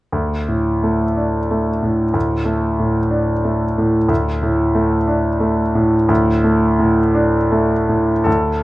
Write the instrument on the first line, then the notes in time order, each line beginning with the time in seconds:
grand piano
0.12 D2
0.48 A2
0.83 A3
1.17 D4
1.51 A3
1.83 A2
2.14 D2
2.45 A3
2.79 A2
3.10 D4
3.44 A3
3.78 A2
4.09 D2
4.42 A2
4.75 A3
5.08 D4
5.40 A3
5.75 A2
6.09 D2
6.44 A3
6.79 A2
7.14 D4
7.52 A3
7.89 A2
8.24 D2 A4